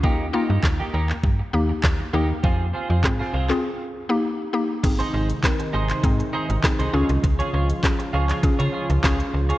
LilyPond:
<<
  \new Staff \with { instrumentName = "Clean electric guitar" } { \time 4/4 \key aes \major \tempo 4 = 100 <bes ees' g'>16 r16 <bes ees' g'>16 <bes ees' g'>16 r16 <bes ees' g'>16 <bes ees' g'>16 r4. r16 <bes ees' g'>16 r16 | <c' f' aes'>16 r16 <c' f' aes'>16 <c' f' aes'>16 r16 <c' f' aes'>16 <c' f' aes'>16 r2 r16 | r16 <ees' aes' c''>16 <ees' aes' c''>16 r8. <ees' aes' c''>16 <ees' aes' c''>16 r8 <ees' aes' c''>16 r8 <ees' aes' c''>16 <f' aes' des''>16 r16 | r16 <f' aes' des''>16 <f' aes' des''>16 r8. <f' aes' des''>16 <f' aes' des''>16 r16 <f' aes' des''>16 <f' aes' des''>16 r16 <f' aes' des''>16 r8 <f' aes' des''>16 | }
  \new Staff \with { instrumentName = "Synth pluck" } { \time 4/4 \key aes \major <bes ees' g'>16 r16 <bes ees' f'>4~ <bes ees' f'>16 r8. <bes ees' g'>8. r16 <bes ees' g'>8 | r4 <c' f' aes'>8 r16 <c' f' aes'>16 r8. <bes ees' g'>8 r16 <bes ees' g'>16 r16 | <c' ees' aes'>8. r16 <c' ees' bes'>8. r16 <c' ees' aes'>8. r16 <c' ees' aes'>8 <des' f' aes'>8~ | <des' f' aes'>8. r16 <des' f' aes'>8. r16 <des' f' aes'>8. r16 <des' f' aes'>8. r16 | }
  \new Staff \with { instrumentName = "Analog synth pad" } { \clef bass \time 4/4 \key aes \major << { r1 | r1 | <c ees ees'>2.~ <c ees ees'>8 <des f f'>8~ | <des f f'>1 | } \\ { r1 | r1 | aes1~ | aes1 | } >> }
  \new Staff \with { instrumentName = "FM bass" } { \clef bass \time 4/4 \key aes \major ees,8. g,16 ees,8 ees,8 g,8 ees,8 ees,8 ees,8 | f,8. f,16 aes,8 c,8 r2 | aes,,8 aes,,8 r8 aes,,8 aes,8 r16 aes,,16 r16 c,16 des,16 c,16 | des,8 des,8 r8 des,8 des16 des16 r16 des,16 des,8 des,8 | }
  \new DrumStaff \with { instrumentName = "Drums" } \drummode { \time 4/4 bd4 <hc bd sn>8. hc16 bd4 <hc bd sn>4 | bd4 <hc bd sn>8. hc16 r4 r4 | <cymc hh bd>16 hh8 hh16 <hc hh bd sn>16 hh8 <hc hh>16 <hh bd>16 hh8 hh16 <hc hh bd sn>16 hh8 hh16 | <hh bd>16 hh8 hh16 <hc hh bd sn>16 hh8 <hc hh>16 <hh bd>16 hh8 hh16 <hc hh bd sn>16 hh8 hh16 | }
>>